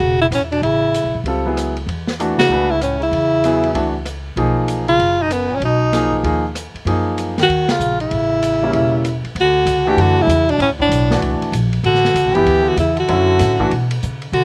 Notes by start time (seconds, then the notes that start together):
Already playing: C#3 F#4
0.00 E1
0.21 C#3 E4
0.31 E2 A2 C#4, cross-stick, hi-hat pedal, ride
0.52 B2 D4, ride
0.62 A1 C#3 E4, ride
0.94 hi-hat pedal, ride
1.04 B1
1.15 A#1
1.24 C#2 G3 C4 F4, ride
1.28 A4
1.46 F#3 B3 E4 G#4
1.57 cross-stick, hi-hat pedal, ride
1.76 ride
1.87 E2, ride
2.07 snare
2.20 E3 A3 D4 F#4, hi-hat pedal, ride
2.37 C#3 F#4, muted upright bass stroke, snare, ride
2.50 C#2 A3 D4 G#4 B4
2.69 C#3 E4
2.81 A2 C#4, cross-stick, hi-hat pedal, ride
2.99 C#3, ride
3.03 E4
3.11 E2, ride
3.44 F#3 B3 E4 G#4, hi-hat pedal, ride
3.63 ride
3.74 C#2 E3 A3 D4 F#4, ride
4.05 cross-stick, hi-hat pedal, ride
4.36 B1 F3 A#3 D#4 G#4, ride
4.68 hi-hat pedal, ride
4.87 C#3 F4, ride
4.99 F#1, ride
5.19 B2 D#4
5.29 F#2 B3, cross-stick, hi-hat pedal, ride
5.50 A#2
5.55 C#4
5.60 B1 B2, ride
5.65 D#4
5.93 F3 A#3 D#4 G#4, snare, hi-hat pedal, ride
6.12 kick
6.23 D#2 F3 A#3 D#4 G#4, ride
6.55 cross-stick, hi-hat pedal, ride
6.74 muted upright bass stroke, ride
6.85 F#2 F3 A#3 D#4 G#4, ride
7.18 hi-hat pedal, ride
7.38 D#3, snare, ride
7.43 F#4
7.48 D#2, ride
7.69 C#3 F4, snare, ride
7.79 A#1, hi-hat pedal
8.00 C#3 E4, ride
8.11 A1, ride
8.43 hi-hat pedal, ride
8.62 G3 A#3 C#4 E4
8.73 E1, ride
9.04 cross-stick, hi-hat pedal, ride
9.24 muted upright bass stroke, ride
9.35 D2 D3, ride
9.40 F#4
9.65 C#2, hi-hat pedal, ride
9.86 E3 A3 D4 F#4 G4
9.96 F#2 D3, ride
10.02 F#4
10.17 C#3
10.22 E4
10.27 E2, hi-hat pedal, ride
10.47 B2 D4, ride
10.58 D2 A2 C#4, ride
10.79 A2 D4, kick
10.89 B1, hi-hat pedal, ride
11.11 E3 A3 D4 F#4, snare
11.21 C#2, ride
11.41 muted upright bass stroke, ride
11.52 A#1, hi-hat pedal, ride
11.73 ride
11.83 A1 D3 F#4, ride
11.94 snare
12.05 snare
12.14 C#2, hi-hat pedal, ride
12.25 A1
12.34 F#1 E3 B3 E4 G4, ride
12.45 D2, ride
12.64 D3
12.69 F#4
12.76 E2 C#3 E4, hi-hat pedal, ride
12.95 D3, ride
13.00 F#4
13.08 F#2 D3 F#3 C#4 E4, ride
13.39 A2, snare, hi-hat pedal, ride
13.59 E3 A3 D4 F#4, kick
13.71 B2, ride
13.91 ride
14.02 C#3, hi-hat pedal
14.22 ride
14.32 C3 D3 F#4, ride